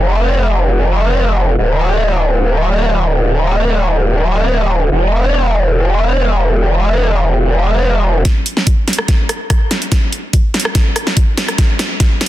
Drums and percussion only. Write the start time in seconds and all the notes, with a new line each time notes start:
8.25 kick, snare, closed hi-hat
8.46 closed hi-hat
8.57 snare
8.67 kick, closed hi-hat
8.88 snare, closed hi-hat
8.93 closed hi-hat
8.98 cross-stick
9.08 kick, snare, closed hi-hat
9.29 cross-stick, closed hi-hat
9.50 kick, cross-stick, closed hi-hat
9.71 snare, closed hi-hat
9.82 closed hi-hat
9.92 kick, snare, closed hi-hat
10.12 closed hi-hat
10.33 kick, closed hi-hat
10.54 snare, closed hi-hat
10.60 closed hi-hat
10.65 cross-stick
10.75 kick, snare, closed hi-hat
10.96 cross-stick, closed hi-hat
11.07 snare
11.17 kick, closed hi-hat
11.37 snare, closed hi-hat
11.48 cross-stick, closed hi-hat
11.58 kick, snare, closed hi-hat
11.79 snare, closed hi-hat
12.00 kick, snare, closed hi-hat
12.21 snare, closed hi-hat